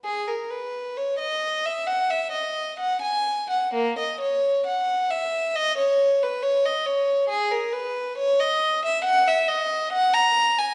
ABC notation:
X:1
M:4/4
L:1/16
Q:1/4=68
K:D#phr
V:1 name="Violin"
G A B2 c d2 e f e d2 f g2 f | A, d c2 f2 e2 d c2 B c d c2 | G A B2 c d2 e f e d2 f a2 g |]